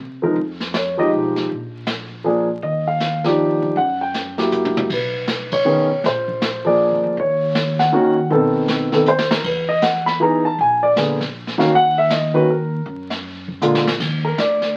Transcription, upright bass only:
0, 0, Header, 1, 2, 480
1, 0, Start_track
1, 0, Tempo, 379027
1, 445, Time_signature, 3, 2, 24, 8
1, 18702, End_track
2, 0, Start_track
2, 0, Title_t, "Upright bass"
2, 0, Program_c, 0, 32
2, 0, Note_on_c, 0, 48, 68
2, 412, Note_off_c, 0, 48, 0
2, 454, Note_on_c, 0, 41, 81
2, 1358, Note_off_c, 0, 41, 0
2, 1403, Note_on_c, 0, 35, 67
2, 1850, Note_off_c, 0, 35, 0
2, 1892, Note_on_c, 0, 34, 76
2, 3277, Note_off_c, 0, 34, 0
2, 3323, Note_on_c, 0, 39, 85
2, 4712, Note_off_c, 0, 39, 0
2, 4759, Note_on_c, 0, 42, 86
2, 6150, Note_off_c, 0, 42, 0
2, 6201, Note_on_c, 0, 35, 84
2, 7590, Note_off_c, 0, 35, 0
2, 7648, Note_on_c, 0, 34, 92
2, 8714, Note_off_c, 0, 34, 0
2, 8754, Note_on_c, 0, 41, 65
2, 8903, Note_off_c, 0, 41, 0
2, 8911, Note_on_c, 0, 38, 70
2, 9064, Note_off_c, 0, 38, 0
2, 9082, Note_on_c, 0, 39, 85
2, 10471, Note_off_c, 0, 39, 0
2, 10517, Note_on_c, 0, 35, 81
2, 11429, Note_off_c, 0, 35, 0
2, 11473, Note_on_c, 0, 39, 75
2, 11923, Note_off_c, 0, 39, 0
2, 11952, Note_on_c, 0, 40, 82
2, 13347, Note_off_c, 0, 40, 0
2, 13405, Note_on_c, 0, 34, 83
2, 14617, Note_off_c, 0, 34, 0
2, 14659, Note_on_c, 0, 40, 70
2, 14826, Note_off_c, 0, 40, 0
2, 14844, Note_on_c, 0, 39, 91
2, 16233, Note_off_c, 0, 39, 0
2, 16282, Note_on_c, 0, 42, 90
2, 17193, Note_off_c, 0, 42, 0
2, 17240, Note_on_c, 0, 34, 78
2, 17689, Note_off_c, 0, 34, 0
2, 17727, Note_on_c, 0, 39, 85
2, 18192, Note_off_c, 0, 39, 0
2, 18207, Note_on_c, 0, 38, 90
2, 18672, Note_off_c, 0, 38, 0
2, 18702, End_track
0, 0, End_of_file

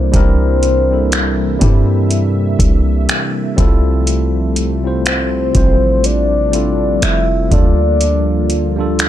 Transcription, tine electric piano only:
0, 0, Header, 1, 2, 480
1, 0, Start_track
1, 0, Tempo, 983607
1, 67, Time_signature, 4, 2, 24, 8
1, 4435, End_track
2, 0, Start_track
2, 0, Title_t, "Tine electric piano"
2, 0, Program_c, 0, 4
2, 0, Control_c, 0, 64, 127
2, 0, Note_on_c, 0, 55, 75
2, 0, Note_on_c, 0, 60, 68
2, 0, Note_on_c, 0, 62, 65
2, 0, Note_on_c, 0, 64, 67
2, 0, Note_on_c, 0, 70, 79
2, 58, Note_off_c, 0, 55, 0
2, 58, Note_on_c, 0, 55, 96
2, 63, Note_off_c, 0, 60, 0
2, 63, Note_on_c, 0, 60, 89
2, 68, Note_off_c, 0, 62, 0
2, 68, Note_on_c, 0, 62, 88
2, 73, Note_off_c, 0, 64, 0
2, 73, Control_c, 0, 64, 0
2, 73, Note_on_c, 0, 64, 91
2, 77, Note_off_c, 0, 70, 0
2, 79, Note_on_c, 0, 70, 107
2, 149, Control_c, 0, 64, 127
2, 418, Note_off_c, 0, 55, 0
2, 420, Note_off_c, 0, 60, 0
2, 423, Note_off_c, 0, 62, 0
2, 425, Note_off_c, 0, 64, 0
2, 428, Note_off_c, 0, 70, 0
2, 437, Note_on_c, 0, 55, 64
2, 442, Note_on_c, 0, 60, 60
2, 447, Note_on_c, 0, 62, 58
2, 452, Note_on_c, 0, 64, 59
2, 457, Note_on_c, 0, 69, 72
2, 765, Note_off_c, 0, 55, 0
2, 768, Note_off_c, 0, 60, 0
2, 770, Note_off_c, 0, 62, 0
2, 773, Note_off_c, 0, 64, 0
2, 775, Note_off_c, 0, 69, 0
2, 777, Note_on_c, 0, 55, 86
2, 781, Note_on_c, 0, 60, 76
2, 787, Note_on_c, 0, 62, 76
2, 792, Note_on_c, 0, 64, 76
2, 797, Note_on_c, 0, 67, 90
2, 1696, Note_off_c, 0, 55, 0
2, 1698, Note_off_c, 0, 60, 0
2, 1701, Note_off_c, 0, 62, 0
2, 1703, Note_off_c, 0, 64, 0
2, 1706, Note_off_c, 0, 67, 0
2, 1738, Note_on_c, 0, 55, 85
2, 1742, Note_on_c, 0, 60, 84
2, 1747, Note_on_c, 0, 64, 84
2, 1753, Control_c, 0, 64, 0
2, 1753, Note_on_c, 0, 65, 78
2, 1757, Note_on_c, 0, 69, 101
2, 1826, Control_c, 0, 64, 127
2, 2322, Note_off_c, 0, 55, 0
2, 2324, Note_off_c, 0, 60, 0
2, 2326, Note_off_c, 0, 64, 0
2, 2329, Note_off_c, 0, 65, 0
2, 2332, Note_off_c, 0, 69, 0
2, 2356, Note_on_c, 0, 55, 66
2, 2361, Note_on_c, 0, 60, 61
2, 2366, Note_on_c, 0, 64, 59
2, 2372, Note_on_c, 0, 65, 59
2, 2377, Note_on_c, 0, 72, 72
2, 2685, Note_off_c, 0, 55, 0
2, 2687, Note_off_c, 0, 60, 0
2, 2689, Note_off_c, 0, 64, 0
2, 2692, Note_off_c, 0, 65, 0
2, 2695, Note_off_c, 0, 72, 0
2, 2698, Note_on_c, 0, 55, 71
2, 2703, Note_on_c, 0, 60, 63
2, 2708, Note_on_c, 0, 64, 62
2, 2713, Note_on_c, 0, 65, 63
2, 2718, Note_on_c, 0, 72, 77
2, 3159, Note_off_c, 0, 55, 0
2, 3162, Note_off_c, 0, 60, 0
2, 3165, Note_off_c, 0, 64, 0
2, 3167, Note_off_c, 0, 65, 0
2, 3169, Note_off_c, 0, 72, 0
2, 3179, Note_on_c, 0, 55, 74
2, 3184, Note_on_c, 0, 60, 72
2, 3189, Note_on_c, 0, 64, 67
2, 3194, Note_on_c, 0, 65, 69
2, 3199, Note_on_c, 0, 69, 79
2, 3652, Note_off_c, 0, 55, 0
2, 3658, Note_on_c, 0, 55, 70
2, 3663, Note_on_c, 0, 57, 58
2, 3665, Note_off_c, 0, 60, 0
2, 3668, Note_off_c, 0, 64, 0
2, 3668, Note_off_c, 0, 65, 0
2, 3668, Note_on_c, 0, 62, 72
2, 3673, Note_off_c, 0, 69, 0
2, 3674, Control_c, 0, 64, 0
2, 3674, Note_on_c, 0, 65, 70
2, 3679, Note_on_c, 0, 69, 80
2, 3695, Note_on_c, 0, 58, 70
2, 3702, Note_off_c, 0, 57, 0
2, 3754, Control_c, 0, 64, 127
2, 4242, Note_off_c, 0, 55, 0
2, 4247, Note_off_c, 0, 62, 0
2, 4250, Note_off_c, 0, 65, 0
2, 4252, Note_off_c, 0, 69, 0
2, 4260, Note_off_c, 0, 58, 0
2, 4276, Note_on_c, 0, 55, 77
2, 4281, Note_on_c, 0, 58, 68
2, 4286, Note_on_c, 0, 62, 72
2, 4291, Note_on_c, 0, 65, 68
2, 4296, Note_on_c, 0, 69, 83
2, 4435, Note_off_c, 0, 55, 0
2, 4435, Note_off_c, 0, 58, 0
2, 4435, Note_off_c, 0, 62, 0
2, 4435, Note_off_c, 0, 65, 0
2, 4435, Note_off_c, 0, 69, 0
2, 4435, End_track
0, 0, End_of_file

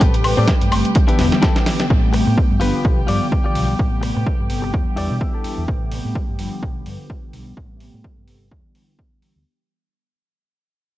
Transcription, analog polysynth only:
0, 0, Header, 1, 2, 480
1, 0, Start_track
1, 0, Key_signature, 0, "minor"
1, 0, Tempo, 472441
1, 9, Time_signature, 4, 2, 24, 8
1, 11148, End_track
2, 0, Start_track
2, 0, Title_t, "Analog polysynth"
2, 0, Program_c, 0, 90
2, 0, Note_on_c, 0, 48, 81
2, 3, Note_on_c, 0, 55, 74
2, 6, Note_on_c, 0, 57, 73
2, 13, Note_on_c, 0, 71, 89
2, 922, Note_off_c, 0, 48, 0
2, 925, Note_off_c, 0, 55, 0
2, 926, Note_off_c, 0, 57, 0
2, 929, Note_off_c, 0, 71, 0
2, 959, Note_on_c, 0, 50, 84
2, 964, Note_on_c, 0, 52, 75
2, 971, Note_on_c, 0, 55, 78
2, 976, Note_on_c, 0, 59, 92
2, 1883, Note_off_c, 0, 50, 0
2, 1885, Note_off_c, 0, 52, 0
2, 1889, Note_off_c, 0, 55, 0
2, 1891, Note_off_c, 0, 59, 0
2, 1918, Note_on_c, 0, 48, 79
2, 1923, Note_on_c, 0, 55, 72
2, 1930, Note_on_c, 0, 57, 71
2, 1934, Note_on_c, 0, 59, 84
2, 2602, Note_off_c, 0, 48, 0
2, 2604, Note_off_c, 0, 55, 0
2, 2608, Note_off_c, 0, 57, 0
2, 2610, Note_off_c, 0, 59, 0
2, 2642, Note_on_c, 0, 50, 91
2, 2648, Note_on_c, 0, 53, 84
2, 2655, Note_on_c, 0, 55, 83
2, 2659, Note_on_c, 0, 59, 102
2, 3804, Note_off_c, 0, 50, 0
2, 3807, Note_off_c, 0, 53, 0
2, 3810, Note_off_c, 0, 55, 0
2, 3812, Note_off_c, 0, 59, 0
2, 3844, Note_on_c, 0, 48, 76
2, 3850, Note_on_c, 0, 55, 72
2, 3856, Note_on_c, 0, 57, 71
2, 3860, Note_on_c, 0, 59, 84
2, 4765, Note_off_c, 0, 48, 0
2, 4768, Note_off_c, 0, 55, 0
2, 4771, Note_off_c, 0, 57, 0
2, 4773, Note_off_c, 0, 59, 0
2, 4802, Note_on_c, 0, 50, 80
2, 4807, Note_on_c, 0, 52, 72
2, 4814, Note_on_c, 0, 55, 73
2, 4820, Note_on_c, 0, 59, 89
2, 5724, Note_off_c, 0, 50, 0
2, 5727, Note_off_c, 0, 52, 0
2, 5730, Note_off_c, 0, 55, 0
2, 5733, Note_off_c, 0, 59, 0
2, 5764, Note_on_c, 0, 48, 76
2, 5768, Note_on_c, 0, 55, 69
2, 5774, Note_on_c, 0, 57, 73
2, 5781, Note_on_c, 0, 59, 84
2, 6445, Note_off_c, 0, 48, 0
2, 6447, Note_off_c, 0, 55, 0
2, 6450, Note_off_c, 0, 57, 0
2, 6454, Note_off_c, 0, 59, 0
2, 6478, Note_on_c, 0, 50, 89
2, 6484, Note_on_c, 0, 53, 82
2, 6491, Note_on_c, 0, 55, 83
2, 6497, Note_on_c, 0, 59, 96
2, 7642, Note_off_c, 0, 50, 0
2, 7645, Note_off_c, 0, 53, 0
2, 7648, Note_off_c, 0, 55, 0
2, 7652, Note_off_c, 0, 59, 0
2, 7680, Note_on_c, 0, 48, 76
2, 7685, Note_on_c, 0, 55, 70
2, 7691, Note_on_c, 0, 57, 71
2, 7695, Note_on_c, 0, 59, 84
2, 8603, Note_off_c, 0, 48, 0
2, 8605, Note_off_c, 0, 55, 0
2, 8608, Note_off_c, 0, 57, 0
2, 8611, Note_off_c, 0, 59, 0
2, 8644, Note_on_c, 0, 50, 75
2, 8648, Note_on_c, 0, 52, 71
2, 8652, Note_on_c, 0, 55, 70
2, 8659, Note_on_c, 0, 59, 86
2, 9565, Note_off_c, 0, 50, 0
2, 9567, Note_off_c, 0, 52, 0
2, 9569, Note_off_c, 0, 55, 0
2, 9573, Note_off_c, 0, 59, 0
2, 11148, End_track
0, 0, End_of_file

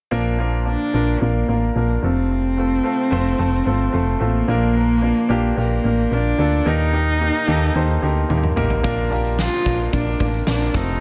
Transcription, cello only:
0, 0, Header, 1, 2, 480
1, 0, Start_track
1, 0, Key_signature, -2, "major"
1, 0, Tempo, 544959
1, 106, Time_signature, 4, 2, 24, 8
1, 9691, End_track
2, 0, Start_track
2, 0, Title_t, "Cello"
2, 0, Program_c, 0, 42
2, 601, Note_on_c, 0, 62, 84
2, 1085, Note_on_c, 0, 58, 68
2, 1098, Note_off_c, 0, 62, 0
2, 1552, Note_off_c, 0, 58, 0
2, 1557, Note_on_c, 0, 58, 62
2, 1776, Note_off_c, 0, 58, 0
2, 1802, Note_on_c, 0, 60, 91
2, 3718, Note_on_c, 0, 58, 92
2, 3731, Note_off_c, 0, 60, 0
2, 4909, Note_off_c, 0, 58, 0
2, 4915, Note_on_c, 0, 58, 78
2, 5401, Note_on_c, 0, 62, 88
2, 5414, Note_off_c, 0, 58, 0
2, 5883, Note_on_c, 0, 63, 98
2, 5896, Note_off_c, 0, 62, 0
2, 7315, Note_off_c, 0, 63, 0
2, 8282, Note_on_c, 0, 65, 91
2, 8721, Note_off_c, 0, 65, 0
2, 8753, Note_on_c, 0, 62, 74
2, 9196, Note_off_c, 0, 62, 0
2, 9236, Note_on_c, 0, 62, 79
2, 9474, Note_on_c, 0, 63, 83
2, 9487, Note_off_c, 0, 62, 0
2, 9691, Note_off_c, 0, 63, 0
2, 9691, End_track
0, 0, End_of_file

